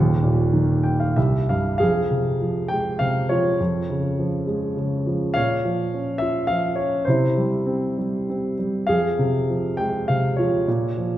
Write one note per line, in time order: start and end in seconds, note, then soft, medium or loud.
0.00 1.13 D#1 medium
0.00 1.13 D#2 medium
0.00 1.13 C#5 medium
0.00 0.98 F5 medium
0.00 1.13 C#6 medium
0.23 1.14 A#2 medium
0.53 1.15 D#3 medium
0.83 0.99 G5 medium
1.00 1.15 F5 medium
1.16 1.79 C2 medium
1.16 1.47 E5 medium
1.49 1.80 G2 soft
1.49 1.76 F5 medium
1.78 3.55 F2 soft
1.78 2.66 G#4 medium
1.78 2.35 F5 medium
2.11 2.99 C3 soft
2.41 3.28 F3 soft
2.68 3.57 G#3 soft
2.68 3.00 G5 medium
2.99 3.58 C3 soft
2.99 3.30 F5 medium
3.29 3.58 F3 soft
3.29 4.44 F4 soft
3.29 4.43 C#5 medium
3.60 5.32 F2 medium
3.90 4.75 C#3 soft
4.19 5.05 F3 soft
4.47 5.33 G#3 soft
4.77 5.34 C#3 soft
5.07 5.35 F3 soft
5.34 7.03 A#2 soft
5.34 6.17 C#5 medium
5.34 6.22 F5 medium
5.65 6.49 F3 soft
5.94 6.78 C#4 soft
6.18 7.04 F4 soft
6.18 6.49 E5 medium
6.47 7.05 F3 soft
6.47 6.77 F5 medium
6.76 7.06 C#4 soft
6.76 7.03 C#5 medium
7.05 8.84 C3 medium
7.05 8.53 C5 medium
7.09 8.55 E4 medium
7.37 7.97 G3 soft
7.67 8.28 C4 soft
7.98 8.58 G3 soft
8.30 8.87 C4 soft
8.59 8.87 G3 soft
8.87 10.64 F2 soft
8.87 9.75 G#4 medium
8.87 9.44 F5 medium
9.19 10.08 C3 soft
9.50 10.38 F3 soft
9.77 10.65 G#3 soft
9.77 10.08 G5 medium
10.08 10.66 C3 soft
10.08 10.38 F5 medium
10.36 10.67 F3 soft
10.36 11.18 F4 soft
10.36 11.18 C#5 medium
10.68 11.18 A#2 medium
10.97 11.18 F3 soft